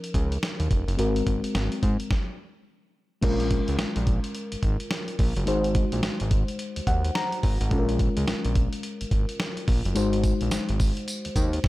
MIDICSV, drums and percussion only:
0, 0, Header, 1, 2, 480
1, 0, Start_track
1, 0, Tempo, 560748
1, 842, Time_signature, 4, 2, 24, 8
1, 9998, End_track
2, 0, Start_track
2, 0, Title_t, "Drums"
2, 32, Note_on_c, 9, 42, 57
2, 118, Note_off_c, 9, 42, 0
2, 122, Note_on_c, 9, 36, 86
2, 126, Note_on_c, 9, 42, 78
2, 208, Note_off_c, 9, 36, 0
2, 212, Note_off_c, 9, 42, 0
2, 273, Note_on_c, 9, 42, 53
2, 359, Note_off_c, 9, 42, 0
2, 366, Note_on_c, 9, 42, 67
2, 367, Note_on_c, 9, 38, 98
2, 452, Note_off_c, 9, 38, 0
2, 452, Note_off_c, 9, 42, 0
2, 511, Note_on_c, 9, 42, 49
2, 597, Note_off_c, 9, 42, 0
2, 605, Note_on_c, 9, 36, 97
2, 606, Note_on_c, 9, 42, 73
2, 691, Note_off_c, 9, 36, 0
2, 691, Note_off_c, 9, 42, 0
2, 757, Note_on_c, 9, 42, 52
2, 842, Note_off_c, 9, 42, 0
2, 845, Note_on_c, 9, 42, 73
2, 930, Note_off_c, 9, 42, 0
2, 993, Note_on_c, 9, 42, 51
2, 1079, Note_off_c, 9, 42, 0
2, 1084, Note_on_c, 9, 36, 102
2, 1085, Note_on_c, 9, 42, 77
2, 1169, Note_off_c, 9, 36, 0
2, 1170, Note_off_c, 9, 42, 0
2, 1232, Note_on_c, 9, 42, 64
2, 1318, Note_off_c, 9, 42, 0
2, 1326, Note_on_c, 9, 38, 104
2, 1326, Note_on_c, 9, 42, 66
2, 1411, Note_off_c, 9, 38, 0
2, 1412, Note_off_c, 9, 42, 0
2, 1471, Note_on_c, 9, 42, 45
2, 1557, Note_off_c, 9, 42, 0
2, 1564, Note_on_c, 9, 42, 79
2, 1565, Note_on_c, 9, 36, 93
2, 1650, Note_off_c, 9, 36, 0
2, 1650, Note_off_c, 9, 42, 0
2, 1710, Note_on_c, 9, 42, 51
2, 1795, Note_off_c, 9, 42, 0
2, 1803, Note_on_c, 9, 36, 97
2, 1803, Note_on_c, 9, 38, 89
2, 1888, Note_off_c, 9, 36, 0
2, 1889, Note_off_c, 9, 38, 0
2, 2761, Note_on_c, 9, 42, 66
2, 2761, Note_on_c, 9, 49, 92
2, 2762, Note_on_c, 9, 36, 120
2, 2846, Note_off_c, 9, 42, 0
2, 2847, Note_off_c, 9, 36, 0
2, 2847, Note_off_c, 9, 49, 0
2, 2910, Note_on_c, 9, 42, 54
2, 2995, Note_off_c, 9, 42, 0
2, 3001, Note_on_c, 9, 42, 78
2, 3003, Note_on_c, 9, 36, 99
2, 3087, Note_off_c, 9, 42, 0
2, 3088, Note_off_c, 9, 36, 0
2, 3149, Note_on_c, 9, 42, 67
2, 3234, Note_off_c, 9, 42, 0
2, 3241, Note_on_c, 9, 38, 113
2, 3241, Note_on_c, 9, 42, 60
2, 3327, Note_off_c, 9, 38, 0
2, 3327, Note_off_c, 9, 42, 0
2, 3388, Note_on_c, 9, 42, 52
2, 3474, Note_off_c, 9, 42, 0
2, 3482, Note_on_c, 9, 42, 76
2, 3484, Note_on_c, 9, 36, 104
2, 3568, Note_off_c, 9, 42, 0
2, 3569, Note_off_c, 9, 36, 0
2, 3628, Note_on_c, 9, 42, 53
2, 3714, Note_off_c, 9, 42, 0
2, 3720, Note_on_c, 9, 42, 65
2, 3806, Note_off_c, 9, 42, 0
2, 3868, Note_on_c, 9, 42, 58
2, 3954, Note_off_c, 9, 42, 0
2, 3960, Note_on_c, 9, 36, 90
2, 3961, Note_on_c, 9, 42, 81
2, 4046, Note_off_c, 9, 36, 0
2, 4047, Note_off_c, 9, 42, 0
2, 4109, Note_on_c, 9, 42, 54
2, 4194, Note_off_c, 9, 42, 0
2, 4200, Note_on_c, 9, 38, 102
2, 4200, Note_on_c, 9, 42, 69
2, 4285, Note_off_c, 9, 42, 0
2, 4286, Note_off_c, 9, 38, 0
2, 4348, Note_on_c, 9, 42, 52
2, 4433, Note_off_c, 9, 42, 0
2, 4442, Note_on_c, 9, 46, 80
2, 4443, Note_on_c, 9, 36, 96
2, 4527, Note_off_c, 9, 46, 0
2, 4529, Note_off_c, 9, 36, 0
2, 4592, Note_on_c, 9, 42, 56
2, 4678, Note_off_c, 9, 42, 0
2, 4683, Note_on_c, 9, 42, 74
2, 4768, Note_off_c, 9, 42, 0
2, 4831, Note_on_c, 9, 42, 54
2, 4916, Note_off_c, 9, 42, 0
2, 4920, Note_on_c, 9, 42, 79
2, 4922, Note_on_c, 9, 36, 97
2, 5006, Note_off_c, 9, 42, 0
2, 5007, Note_off_c, 9, 36, 0
2, 5069, Note_on_c, 9, 42, 60
2, 5154, Note_off_c, 9, 42, 0
2, 5161, Note_on_c, 9, 38, 106
2, 5161, Note_on_c, 9, 42, 60
2, 5246, Note_off_c, 9, 38, 0
2, 5247, Note_off_c, 9, 42, 0
2, 5306, Note_on_c, 9, 42, 52
2, 5392, Note_off_c, 9, 42, 0
2, 5401, Note_on_c, 9, 42, 82
2, 5403, Note_on_c, 9, 36, 105
2, 5486, Note_off_c, 9, 42, 0
2, 5488, Note_off_c, 9, 36, 0
2, 5550, Note_on_c, 9, 42, 55
2, 5636, Note_off_c, 9, 42, 0
2, 5641, Note_on_c, 9, 42, 64
2, 5727, Note_off_c, 9, 42, 0
2, 5789, Note_on_c, 9, 42, 54
2, 5875, Note_off_c, 9, 42, 0
2, 5881, Note_on_c, 9, 36, 98
2, 5883, Note_on_c, 9, 42, 82
2, 5966, Note_off_c, 9, 36, 0
2, 5969, Note_off_c, 9, 42, 0
2, 6031, Note_on_c, 9, 42, 53
2, 6116, Note_off_c, 9, 42, 0
2, 6122, Note_on_c, 9, 42, 67
2, 6123, Note_on_c, 9, 38, 100
2, 6208, Note_off_c, 9, 38, 0
2, 6208, Note_off_c, 9, 42, 0
2, 6270, Note_on_c, 9, 42, 51
2, 6355, Note_off_c, 9, 42, 0
2, 6363, Note_on_c, 9, 46, 82
2, 6364, Note_on_c, 9, 36, 95
2, 6448, Note_off_c, 9, 46, 0
2, 6449, Note_off_c, 9, 36, 0
2, 6513, Note_on_c, 9, 42, 57
2, 6598, Note_off_c, 9, 42, 0
2, 6601, Note_on_c, 9, 36, 116
2, 6601, Note_on_c, 9, 42, 70
2, 6687, Note_off_c, 9, 36, 0
2, 6687, Note_off_c, 9, 42, 0
2, 6752, Note_on_c, 9, 42, 52
2, 6837, Note_off_c, 9, 42, 0
2, 6843, Note_on_c, 9, 36, 97
2, 6843, Note_on_c, 9, 42, 75
2, 6928, Note_off_c, 9, 36, 0
2, 6929, Note_off_c, 9, 42, 0
2, 6991, Note_on_c, 9, 42, 68
2, 7077, Note_off_c, 9, 42, 0
2, 7084, Note_on_c, 9, 38, 115
2, 7084, Note_on_c, 9, 42, 65
2, 7169, Note_off_c, 9, 38, 0
2, 7170, Note_off_c, 9, 42, 0
2, 7230, Note_on_c, 9, 42, 52
2, 7315, Note_off_c, 9, 42, 0
2, 7323, Note_on_c, 9, 42, 77
2, 7324, Note_on_c, 9, 36, 101
2, 7408, Note_off_c, 9, 42, 0
2, 7409, Note_off_c, 9, 36, 0
2, 7469, Note_on_c, 9, 42, 55
2, 7555, Note_off_c, 9, 42, 0
2, 7561, Note_on_c, 9, 42, 62
2, 7647, Note_off_c, 9, 42, 0
2, 7711, Note_on_c, 9, 42, 58
2, 7797, Note_off_c, 9, 42, 0
2, 7801, Note_on_c, 9, 36, 88
2, 7803, Note_on_c, 9, 42, 77
2, 7886, Note_off_c, 9, 36, 0
2, 7888, Note_off_c, 9, 42, 0
2, 7951, Note_on_c, 9, 42, 55
2, 8036, Note_off_c, 9, 42, 0
2, 8043, Note_on_c, 9, 42, 66
2, 8044, Note_on_c, 9, 38, 104
2, 8129, Note_off_c, 9, 38, 0
2, 8129, Note_off_c, 9, 42, 0
2, 8192, Note_on_c, 9, 42, 50
2, 8278, Note_off_c, 9, 42, 0
2, 8284, Note_on_c, 9, 46, 82
2, 8285, Note_on_c, 9, 36, 101
2, 8369, Note_off_c, 9, 46, 0
2, 8370, Note_off_c, 9, 36, 0
2, 8436, Note_on_c, 9, 42, 61
2, 8521, Note_off_c, 9, 42, 0
2, 8522, Note_on_c, 9, 42, 77
2, 8522, Note_on_c, 9, 54, 73
2, 8608, Note_off_c, 9, 42, 0
2, 8608, Note_off_c, 9, 54, 0
2, 8671, Note_on_c, 9, 42, 53
2, 8757, Note_off_c, 9, 42, 0
2, 8761, Note_on_c, 9, 42, 82
2, 8762, Note_on_c, 9, 36, 104
2, 8762, Note_on_c, 9, 54, 64
2, 8847, Note_off_c, 9, 42, 0
2, 8848, Note_off_c, 9, 36, 0
2, 8848, Note_off_c, 9, 54, 0
2, 8909, Note_on_c, 9, 42, 65
2, 8994, Note_off_c, 9, 42, 0
2, 8998, Note_on_c, 9, 54, 99
2, 9001, Note_on_c, 9, 38, 117
2, 9001, Note_on_c, 9, 42, 62
2, 9084, Note_off_c, 9, 54, 0
2, 9086, Note_off_c, 9, 38, 0
2, 9087, Note_off_c, 9, 42, 0
2, 9148, Note_on_c, 9, 42, 51
2, 9234, Note_off_c, 9, 42, 0
2, 9242, Note_on_c, 9, 46, 84
2, 9244, Note_on_c, 9, 36, 103
2, 9244, Note_on_c, 9, 54, 71
2, 9328, Note_off_c, 9, 46, 0
2, 9329, Note_off_c, 9, 36, 0
2, 9330, Note_off_c, 9, 54, 0
2, 9389, Note_on_c, 9, 42, 51
2, 9475, Note_off_c, 9, 42, 0
2, 9482, Note_on_c, 9, 42, 63
2, 9484, Note_on_c, 9, 54, 74
2, 9568, Note_off_c, 9, 42, 0
2, 9570, Note_off_c, 9, 54, 0
2, 9629, Note_on_c, 9, 42, 59
2, 9715, Note_off_c, 9, 42, 0
2, 9721, Note_on_c, 9, 36, 97
2, 9722, Note_on_c, 9, 54, 68
2, 9723, Note_on_c, 9, 42, 85
2, 9807, Note_off_c, 9, 36, 0
2, 9807, Note_off_c, 9, 54, 0
2, 9808, Note_off_c, 9, 42, 0
2, 9872, Note_on_c, 9, 42, 55
2, 9958, Note_off_c, 9, 42, 0
2, 9963, Note_on_c, 9, 36, 114
2, 9963, Note_on_c, 9, 38, 98
2, 9998, Note_off_c, 9, 36, 0
2, 9998, Note_off_c, 9, 38, 0
2, 9998, End_track
0, 0, End_of_file